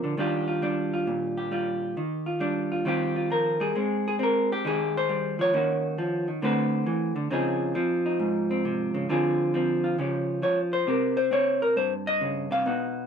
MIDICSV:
0, 0, Header, 1, 2, 480
1, 0, Start_track
1, 0, Key_signature, -3, "major"
1, 0, Tempo, 445434
1, 181, Time_signature, 4, 2, 24, 8
1, 4032, Key_signature, -4, "major"
1, 14080, End_track
2, 0, Start_track
2, 0, Title_t, "Hollow-body jazz guitar"
2, 0, Program_c, 0, 26
2, 0, Note_on_c, 0, 46, 67
2, 0, Note_on_c, 0, 53, 64
2, 0, Note_on_c, 0, 62, 49
2, 0, Note_on_c, 0, 70, 48
2, 39, Note_on_c, 0, 50, 65
2, 171, Note_off_c, 0, 46, 0
2, 184, Note_off_c, 0, 50, 0
2, 188, Note_on_c, 0, 51, 72
2, 190, Note_off_c, 0, 53, 0
2, 194, Note_on_c, 0, 55, 65
2, 201, Note_off_c, 0, 62, 0
2, 205, Note_on_c, 0, 62, 57
2, 214, Note_off_c, 0, 70, 0
2, 214, Note_on_c, 0, 65, 58
2, 218, Note_on_c, 0, 67, 62
2, 509, Note_off_c, 0, 65, 0
2, 514, Note_on_c, 0, 65, 54
2, 662, Note_off_c, 0, 62, 0
2, 666, Note_off_c, 0, 55, 0
2, 670, Note_on_c, 0, 55, 68
2, 679, Note_on_c, 0, 62, 62
2, 1004, Note_off_c, 0, 65, 0
2, 1008, Note_on_c, 0, 65, 58
2, 1155, Note_on_c, 0, 46, 70
2, 1469, Note_off_c, 0, 67, 0
2, 1481, Note_on_c, 0, 67, 52
2, 1619, Note_off_c, 0, 55, 0
2, 1632, Note_on_c, 0, 55, 57
2, 1638, Note_off_c, 0, 65, 0
2, 1642, Note_on_c, 0, 65, 55
2, 2092, Note_off_c, 0, 51, 0
2, 2092, Note_off_c, 0, 55, 0
2, 2094, Note_off_c, 0, 46, 0
2, 2094, Note_off_c, 0, 62, 0
2, 2123, Note_on_c, 0, 51, 67
2, 2155, Note_off_c, 0, 65, 0
2, 2439, Note_on_c, 0, 65, 54
2, 2591, Note_on_c, 0, 55, 68
2, 2596, Note_on_c, 0, 62, 67
2, 2915, Note_off_c, 0, 65, 0
2, 2928, Note_on_c, 0, 65, 55
2, 3052, Note_off_c, 0, 55, 0
2, 3055, Note_off_c, 0, 62, 0
2, 3059, Note_off_c, 0, 51, 0
2, 3060, Note_off_c, 0, 65, 0
2, 3073, Note_on_c, 0, 51, 69
2, 3079, Note_off_c, 0, 67, 0
2, 3080, Note_on_c, 0, 55, 61
2, 3089, Note_on_c, 0, 60, 57
2, 3094, Note_on_c, 0, 65, 64
2, 3106, Note_on_c, 0, 67, 66
2, 3393, Note_off_c, 0, 65, 0
2, 3406, Note_on_c, 0, 65, 51
2, 3555, Note_off_c, 0, 55, 0
2, 3559, Note_on_c, 0, 53, 61
2, 3569, Note_off_c, 0, 67, 0
2, 3573, Note_on_c, 0, 70, 80
2, 3875, Note_off_c, 0, 53, 0
2, 3880, Note_on_c, 0, 55, 61
2, 3888, Note_off_c, 0, 65, 0
2, 3892, Note_on_c, 0, 68, 79
2, 4014, Note_off_c, 0, 51, 0
2, 4022, Note_off_c, 0, 60, 0
2, 4037, Note_off_c, 0, 55, 0
2, 4044, Note_off_c, 0, 70, 0
2, 4045, Note_on_c, 0, 56, 73
2, 4056, Note_on_c, 0, 60, 41
2, 4363, Note_off_c, 0, 68, 0
2, 4393, Note_on_c, 0, 68, 85
2, 4478, Note_off_c, 0, 68, 0
2, 4504, Note_off_c, 0, 60, 0
2, 4517, Note_on_c, 0, 60, 68
2, 4561, Note_on_c, 0, 70, 86
2, 4857, Note_off_c, 0, 70, 0
2, 4875, Note_on_c, 0, 67, 89
2, 5009, Note_on_c, 0, 51, 70
2, 5033, Note_on_c, 0, 68, 98
2, 5335, Note_off_c, 0, 67, 0
2, 5360, Note_on_c, 0, 72, 106
2, 5482, Note_off_c, 0, 56, 0
2, 5486, Note_on_c, 0, 55, 65
2, 5800, Note_off_c, 0, 55, 0
2, 5808, Note_on_c, 0, 53, 65
2, 5813, Note_off_c, 0, 68, 0
2, 5817, Note_off_c, 0, 72, 0
2, 5832, Note_on_c, 0, 73, 99
2, 5937, Note_off_c, 0, 60, 0
2, 5942, Note_off_c, 0, 51, 0
2, 5962, Note_off_c, 0, 53, 0
2, 5966, Note_on_c, 0, 51, 70
2, 5976, Note_on_c, 0, 58, 50
2, 5980, Note_on_c, 0, 61, 46
2, 5992, Note_on_c, 0, 66, 50
2, 6444, Note_off_c, 0, 58, 0
2, 6448, Note_on_c, 0, 53, 65
2, 6754, Note_off_c, 0, 51, 0
2, 6760, Note_off_c, 0, 53, 0
2, 6767, Note_on_c, 0, 51, 55
2, 6908, Note_off_c, 0, 61, 0
2, 6913, Note_off_c, 0, 66, 0
2, 6916, Note_off_c, 0, 51, 0
2, 6921, Note_on_c, 0, 50, 78
2, 6928, Note_on_c, 0, 57, 60
2, 6933, Note_off_c, 0, 73, 0
2, 6933, Note_on_c, 0, 60, 64
2, 6941, Note_on_c, 0, 66, 65
2, 6949, Note_on_c, 0, 71, 70
2, 7392, Note_off_c, 0, 50, 0
2, 7397, Note_on_c, 0, 52, 69
2, 7708, Note_off_c, 0, 52, 0
2, 7712, Note_on_c, 0, 50, 69
2, 7860, Note_off_c, 0, 57, 0
2, 7867, Note_off_c, 0, 66, 0
2, 7868, Note_off_c, 0, 50, 0
2, 7871, Note_off_c, 0, 71, 0
2, 7872, Note_on_c, 0, 49, 81
2, 7878, Note_on_c, 0, 53, 68
2, 7882, Note_off_c, 0, 60, 0
2, 7886, Note_on_c, 0, 60, 51
2, 7895, Note_on_c, 0, 63, 60
2, 7902, Note_on_c, 0, 68, 67
2, 8341, Note_off_c, 0, 60, 0
2, 8348, Note_off_c, 0, 53, 0
2, 8352, Note_off_c, 0, 49, 0
2, 8352, Note_on_c, 0, 53, 82
2, 8359, Note_on_c, 0, 60, 57
2, 8669, Note_off_c, 0, 63, 0
2, 8682, Note_on_c, 0, 63, 56
2, 8832, Note_on_c, 0, 44, 67
2, 9151, Note_off_c, 0, 60, 0
2, 9167, Note_on_c, 0, 60, 59
2, 9322, Note_on_c, 0, 48, 65
2, 9635, Note_off_c, 0, 48, 0
2, 9639, Note_on_c, 0, 49, 67
2, 9771, Note_off_c, 0, 44, 0
2, 9776, Note_off_c, 0, 63, 0
2, 9779, Note_off_c, 0, 60, 0
2, 9785, Note_off_c, 0, 68, 0
2, 9790, Note_off_c, 0, 53, 0
2, 9795, Note_off_c, 0, 49, 0
2, 9799, Note_on_c, 0, 50, 78
2, 9804, Note_on_c, 0, 53, 57
2, 9809, Note_on_c, 0, 60, 61
2, 9816, Note_on_c, 0, 65, 62
2, 9822, Note_on_c, 0, 68, 59
2, 10271, Note_off_c, 0, 53, 0
2, 10275, Note_off_c, 0, 60, 0
2, 10281, Note_on_c, 0, 53, 70
2, 10292, Note_on_c, 0, 60, 56
2, 10590, Note_off_c, 0, 65, 0
2, 10603, Note_on_c, 0, 65, 57
2, 10733, Note_off_c, 0, 50, 0
2, 10736, Note_off_c, 0, 65, 0
2, 10738, Note_off_c, 0, 60, 0
2, 10745, Note_off_c, 0, 68, 0
2, 10756, Note_off_c, 0, 53, 0
2, 10758, Note_on_c, 0, 49, 73
2, 10767, Note_on_c, 0, 53, 51
2, 10772, Note_on_c, 0, 61, 49
2, 10783, Note_on_c, 0, 67, 43
2, 11221, Note_off_c, 0, 53, 0
2, 11232, Note_off_c, 0, 49, 0
2, 11233, Note_on_c, 0, 53, 64
2, 11242, Note_on_c, 0, 73, 78
2, 11411, Note_off_c, 0, 73, 0
2, 11563, Note_on_c, 0, 72, 93
2, 11700, Note_off_c, 0, 61, 0
2, 11702, Note_off_c, 0, 67, 0
2, 11710, Note_off_c, 0, 53, 0
2, 11715, Note_on_c, 0, 48, 70
2, 11724, Note_on_c, 0, 60, 48
2, 11728, Note_on_c, 0, 67, 45
2, 11736, Note_on_c, 0, 70, 49
2, 12023, Note_off_c, 0, 72, 0
2, 12032, Note_off_c, 0, 70, 0
2, 12036, Note_on_c, 0, 72, 98
2, 12178, Note_off_c, 0, 60, 0
2, 12191, Note_on_c, 0, 60, 70
2, 12206, Note_on_c, 0, 73, 87
2, 12510, Note_off_c, 0, 72, 0
2, 12515, Note_off_c, 0, 73, 0
2, 12524, Note_on_c, 0, 70, 82
2, 12670, Note_off_c, 0, 48, 0
2, 12675, Note_off_c, 0, 70, 0
2, 12677, Note_on_c, 0, 43, 63
2, 12683, Note_on_c, 0, 72, 97
2, 12856, Note_off_c, 0, 72, 0
2, 13010, Note_on_c, 0, 75, 105
2, 13158, Note_on_c, 0, 49, 63
2, 13471, Note_off_c, 0, 49, 0
2, 13477, Note_off_c, 0, 75, 0
2, 13479, Note_on_c, 0, 48, 66
2, 13492, Note_on_c, 0, 77, 99
2, 13608, Note_off_c, 0, 60, 0
2, 13617, Note_off_c, 0, 67, 0
2, 13631, Note_off_c, 0, 43, 0
2, 13632, Note_off_c, 0, 48, 0
2, 13639, Note_on_c, 0, 47, 66
2, 13647, Note_on_c, 0, 59, 50
2, 13658, Note_on_c, 0, 63, 43
2, 13658, Note_on_c, 0, 66, 47
2, 14080, Note_off_c, 0, 47, 0
2, 14080, Note_off_c, 0, 59, 0
2, 14080, Note_off_c, 0, 63, 0
2, 14080, Note_off_c, 0, 66, 0
2, 14080, Note_off_c, 0, 77, 0
2, 14080, End_track
0, 0, End_of_file